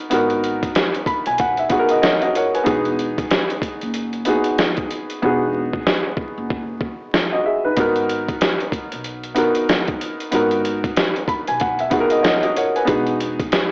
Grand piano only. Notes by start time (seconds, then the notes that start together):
Already playing: B3 D#4 F#4 A#4
0.10 B3 D#4 F#4 A#4
1.07 B5
1.27 G#5
1.39 F#5
1.59 E5
1.69 B3 D#4 F#4 G#4 F#5
1.79 A#4
1.90 D#5
2.02 C#5 D#5
2.22 F#4 D#5
2.36 A#4 C#5 F#5
2.54 B4 G#5
2.63 B3 D#4 F#4 G#4
4.25 B3 D#4 F#4 G#4
5.22 B3 D#4 F#4 G#4
7.32 F#4 D#5
7.46 G#4 E5
7.65 D#4 B4
7.76 B3 D#4 F#4 A#4
9.34 B3 D#4 F#4 A#4
10.31 B3 D#4 F#4 A#4
11.28 B5
11.48 G#5
11.60 F#5
11.80 E5
11.90 B3 D#4 F#4 G#4 F#5
12.00 A#4
12.11 D#5
12.23 C#5 D#5
12.43 F#4 D#5
12.57 A#4 C#5 F#5
12.75 B4 G#5
12.85 B3 D#4 F#4 G#4